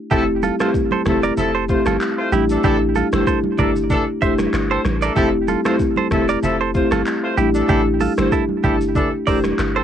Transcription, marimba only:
0.11 0.56 A3 medium
0.11 0.56 C4 medium
0.11 0.56 E4 medium
0.11 0.56 G4 loud
0.60 0.82 A3 medium
0.60 0.82 C4 medium
0.60 0.82 E4 medium
0.60 0.83 G4 medium
1.06 1.30 A3 medium
1.06 1.30 C4 medium
1.06 1.30 E4 medium
1.06 1.30 G4 medium
1.69 1.93 A3 medium
1.69 1.93 C4 medium
1.69 1.93 E4 medium
1.69 1.93 G4 medium
2.32 2.61 A3 loud
2.32 2.61 D4 medium
2.32 2.62 E4 medium
2.32 2.62 G4 loud
2.63 3.08 A3 medium
2.63 3.09 D4 medium
2.63 3.09 E4 medium
2.63 3.09 G4 loud
3.12 3.35 A3 medium
3.12 3.35 D4 medium
3.12 3.35 E4 medium
3.12 3.35 G4 medium
3.58 3.82 A3 medium
3.58 3.82 D4 medium
3.58 3.83 E4 medium
3.58 3.83 G4 medium
4.21 4.45 A3 medium
4.21 4.46 D4 medium
4.21 4.46 E4 medium
4.21 4.46 G4 medium
5.16 5.61 A3 medium
5.16 5.61 C4 medium
5.16 5.61 E4 medium
5.16 5.61 G4 loud
5.65 5.88 A3 medium
5.65 5.88 C4 medium
5.65 5.88 E4 medium
5.65 5.88 G4 medium
6.11 6.35 A3 medium
6.11 6.35 C4 medium
6.11 6.35 E4 medium
6.11 6.35 G4 medium
6.74 6.98 A3 medium
6.74 6.98 C4 medium
6.74 6.98 E4 medium
6.74 6.98 G4 medium
7.38 7.67 A3 loud
7.38 7.67 D4 medium
7.38 7.67 E4 medium
7.38 7.67 G4 loud
7.69 8.14 A3 medium
7.69 8.14 D4 medium
7.69 8.14 E4 medium
7.69 8.14 G4 loud
8.18 8.40 A3 medium
8.18 8.40 D4 medium
8.18 8.40 E4 medium
8.18 8.41 G4 medium
8.64 8.88 A3 medium
8.64 8.88 D4 medium
8.64 8.88 E4 medium
8.64 8.88 G4 medium
9.27 9.51 A3 medium
9.27 9.51 D4 medium
9.27 9.51 E4 medium
9.27 9.51 G4 medium

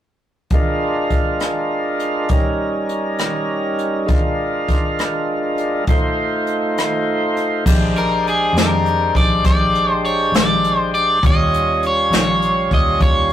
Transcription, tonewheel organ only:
0.53 2.29 G#3 medium
0.53 2.30 D4 soft
0.53 2.29 F4 medium
0.53 2.29 A#4 medium
2.30 4.07 G3 medium
2.30 4.07 C#4 medium
2.30 4.07 D#4 medium
2.30 4.05 A#4 medium
4.06 5.84 G#3 medium
4.06 5.84 D4 medium
4.06 5.84 F4 medium
4.06 5.85 A#4 medium
5.88 7.65 A3 medium
5.88 7.65 D#4 medium
5.88 7.65 F4 medium
5.88 7.65 C5 medium
7.66 11.19 G#3 medium
7.66 11.20 D4 medium
7.66 11.20 G4 medium
7.66 11.19 C5 medium
11.22 13.33 G3 medium
11.22 13.33 C#4 medium
11.22 13.33 F4 medium
11.22 13.33 C#5 medium

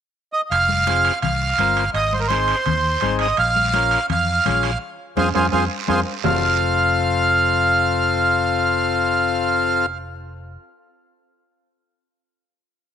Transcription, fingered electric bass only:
0.51 1.09 F1 medium
1.23 1.52 C2 medium
1.58 1.87 G1 medium
1.94 2.52 G#1 medium
2.66 2.95 D#2 medium
3.02 3.31 G#1 medium
3.38 3.96 A#1 medium
4.10 4.39 F2 medium
4.47 4.75 A#1 medium
5.17 5.31 F2 medium
5.35 5.49 F2 medium
5.53 5.66 F2 medium
5.89 6.02 F2 medium
6.24 10.56 F1 medium

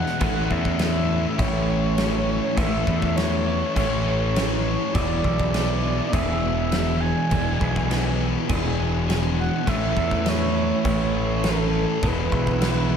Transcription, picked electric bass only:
0.21 0.46 A1 loud
0.50 1.25 E2 medium
1.38 2.39 A1 medium
2.57 2.82 A1 loud
2.87 3.62 E2 medium
3.76 4.76 A1 loud
4.94 5.20 E1 medium
5.24 5.99 B1 medium
6.13 7.13 E1 medium
7.31 7.56 E1 loud
7.60 8.35 B1 medium
8.49 9.49 E1 loud
9.67 9.92 A1 medium
9.96 10.71 E2 medium
10.85 11.85 A1 medium
12.02 12.28 E1 medium
12.32 12.97 B1 medium

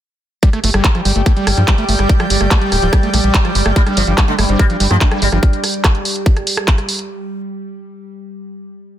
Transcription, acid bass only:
0.43 0.49 G3 loud
0.53 0.59 A3 medium
0.64 0.70 A3 medium
0.74 0.83 G3 loud
0.84 0.88 G3 loud
0.95 1.01 F3 medium
1.05 1.12 G3 loud
1.16 1.22 A3 medium
1.26 1.32 A3 medium
1.37 1.46 G3 loud
1.47 1.51 G3 loud
1.57 1.64 F3 medium
1.68 1.74 G3 loud
1.78 1.84 A3 medium
1.89 1.95 A3 medium
1.99 2.08 G3 loud
2.09 2.13 G3 loud
2.20 2.26 F3 medium
2.30 2.37 G3 loud
2.41 2.47 A3 medium
2.51 2.57 A3 medium
2.62 2.71 G3 loud
2.72 2.76 G3 loud
2.82 2.89 F3 medium
2.93 2.99 G3 loud
3.03 3.09 A3 medium
3.14 3.20 A3 medium
3.24 3.33 G3 loud
3.34 3.38 G3 loud
3.45 3.51 F3 medium
3.55 3.61 G3 loud
3.66 3.72 A3 medium
3.76 3.82 A3 medium
3.87 3.96 G3 loud
3.97 4.01 G3 loud
4.07 4.14 F3 medium
4.18 4.24 G3 loud
4.28 4.34 A3 medium
4.39 4.45 A3 medium
4.49 4.58 G3 loud
4.59 4.63 G3 loud
4.70 4.76 F3 medium
4.80 4.86 G3 loud
4.91 4.97 A3 medium
5.01 5.07 A3 medium
5.11 5.21 G3 loud
5.22 5.26 G3 loud
5.32 5.39 F3 medium

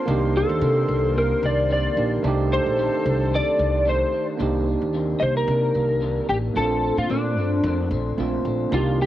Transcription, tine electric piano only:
0.00 0.07 D4 soft
0.00 0.10 A4 medium
0.06 1.92 A#3 medium
0.06 1.93 D4 medium
0.06 1.93 D#4 medium
0.11 1.94 G4 medium
1.96 2.23 A#3 soft
1.96 2.23 D4 soft
1.96 2.24 D#4 soft
1.96 2.25 G4 medium
2.23 4.35 A3 medium
2.23 4.36 D4 medium
2.23 4.37 D#4 medium
2.27 4.38 G4 medium
4.38 6.51 A#3 medium
4.38 6.52 D4 medium
4.38 6.53 D#4 medium
4.43 6.53 G4 medium
6.54 8.14 A3 medium
6.54 8.15 C4 medium
6.54 8.16 D4 medium
6.59 8.17 F4 medium
8.17 8.72 A3 medium
8.17 8.72 C4 medium
8.17 8.70 D4 medium
8.17 8.73 F4 medium
8.69 9.06 A#3 medium
8.69 9.06 D4 medium
8.69 9.06 D#4 medium
8.74 9.06 G4 medium

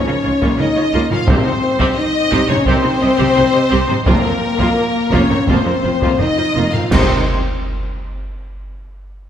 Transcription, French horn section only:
0.00 0.58 C#4 medium
0.59 1.10 D#4 loud
1.10 1.28 F4 medium
1.29 1.96 C4 medium
1.97 2.49 D#4 loud
2.50 2.67 C#4 loud
2.66 3.92 C4 loud
4.09 5.12 A#3 loud
5.14 5.49 C#4 loud
5.50 6.21 C4 loud
6.21 6.74 D#4 loud
6.75 6.92 F4 medium
6.93 7.25 C4 loud

